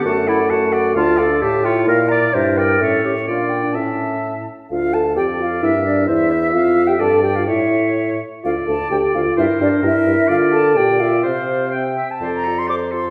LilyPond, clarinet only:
\new Staff \with { instrumentName = "Clarinet" } { \time 2/4 \key d \major \tempo 4 = 129 fis'8 e'8 fis'4 | \key d \minor f'8 a'8 g'8 f'8 | bes'8 d''8 c''8 bes'8 | a'8 g'8 f'8. d'16 |
cis'4 r4 | a'2 | bes'4 c''8 e''8~ | e''4 d''4 |
cis''4. r8 | a'8 a'8 a'8 a'8 | bes'8 bes'8 bes'8 bes'8 | \key f \major bes'4 d''8 e''8 |
f''4 e''8 r8 | d''4 c''4 | }